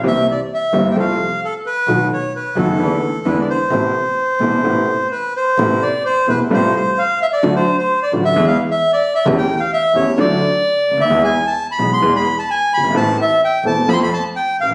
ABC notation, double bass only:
X:1
M:4/4
L:1/8
Q:1/4=130
K:Am
V:1 name="Double bass" clef=bass
C,, z2 G,,, C,, z3 | B,,, z2 ^F,,, E,, z E,, z | A,,, z2 E,,, A,,, z3 | A,,, z2 E,,, A,,, z3 |
D,, z2 A,,, E,, z3 | E,, z2 E,, D,, z2 D,, | E,, z2 B,,, E,, z2 G,,, | A,,, z2 E,,, F,, z2 _B,,, |]